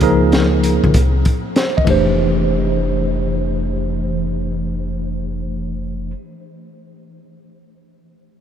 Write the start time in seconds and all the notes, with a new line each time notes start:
Already playing: C#2
0.01 F3 A#3 D#4 G#4 A#4, kick, closed hi-hat
0.32 snare, closed hi-hat
0.64 closed hi-hat
0.84 C#2, kick
0.94 C2, kick, closed hi-hat
1.25 kick, closed hi-hat
1.56 C5, snare, closed hi-hat
1.77 D#5, kick
1.85 F1 E3 A3 D4, kick, ride
1.89 G4 C5